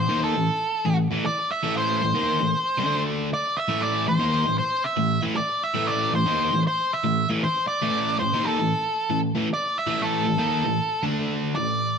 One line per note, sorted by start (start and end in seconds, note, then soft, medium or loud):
0.00 0.20 C5 medium
0.09 0.34 D#3 medium
0.09 0.34 A#3 loud
0.09 0.34 D#4 loud
0.24 0.96 A4 medium
0.35 0.47 A2 medium
0.35 0.47 E3 medium
0.85 1.06 A2 medium
0.85 1.06 E3 medium
1.11 1.23 A2 medium
1.11 1.24 E3 medium
1.26 1.51 D5 loud
1.51 1.74 E5 loud
1.64 2.01 A2 medium
1.64 2.01 E3 medium
1.64 2.02 A3 loud
1.77 3.01 C5 medium
2.03 2.14 A2 medium
2.03 2.15 E3 medium
2.15 2.39 D#3 loud
2.15 2.40 A#3 loud
2.15 2.40 D#4 loud
2.41 2.53 A2 medium
2.41 2.53 E3 medium
2.78 3.29 D3 medium
2.78 3.29 A3 loud
2.78 3.30 D4 loud
3.34 3.58 D5 loud
3.57 3.83 E5 medium
3.68 4.06 A2 medium
3.68 4.07 E3 medium
3.68 4.07 A3 loud
3.82 4.06 D5 loud
4.08 4.19 A2 medium
4.08 4.19 E3 medium
4.08 4.57 C5 loud
4.19 4.44 D#3 loud
4.19 4.45 A#3 medium
4.19 4.45 D#4 loud
4.46 4.59 A2 medium
4.46 4.59 E3 medium
4.58 4.85 C5 loud
4.84 5.20 E5 loud
4.97 5.18 A2 medium
4.97 5.18 E3 medium
5.23 5.35 A2 medium
5.23 5.35 E3 loud
5.36 5.63 D5 medium
5.64 5.89 E5 loud
5.74 6.11 A2 medium
5.74 6.12 E3 loud
5.74 6.13 A3 loud
5.87 6.14 D5 medium
6.12 6.25 A2 medium
6.12 6.26 E3 medium
6.12 6.62 C5 loud
6.26 6.51 D#3 medium
6.26 6.52 A#3 loud
6.26 6.52 D#4 loud
6.52 6.65 A2 medium
6.52 6.65 E3 medium
6.67 6.92 C5 loud
6.93 7.28 E5 medium
7.04 7.24 A2 medium
7.04 7.24 E3 medium
7.30 7.42 A2 medium
7.30 7.42 E3 loud
7.44 7.67 C5 loud
7.68 8.19 D5 loud
7.82 8.19 A2 medium
7.82 8.19 E3 medium
7.82 8.20 A3 loud
8.19 8.33 A2 medium
8.19 8.33 E3 medium
8.19 8.46 C5 medium
8.33 8.58 D#3 loud
8.33 8.58 A#3 medium
8.33 8.58 D#4 loud
8.45 9.19 A4 medium
8.59 8.72 A2 medium
8.59 8.72 E3 medium
9.10 9.31 A2 medium
9.10 9.31 E3 medium
9.35 9.47 A2 medium
9.35 9.48 E3 medium
9.54 9.78 D5 medium
9.78 10.03 E5 loud
9.87 10.24 A2 medium
9.87 10.24 E3 medium
9.87 10.25 A3 loud
10.02 11.01 A4 medium
10.25 10.38 A2 medium
10.25 10.38 E3 medium
10.39 10.64 D#3 medium
10.39 10.64 A#3 loud
10.39 10.64 D#4 loud
10.65 10.78 A2 medium
10.65 10.78 E3 medium
11.03 11.55 D3 loud
11.03 11.55 A3 loud
11.03 11.55 D4 loud
11.55 11.98 A2 medium
11.55 11.98 E3 medium
11.55 11.98 D5 medium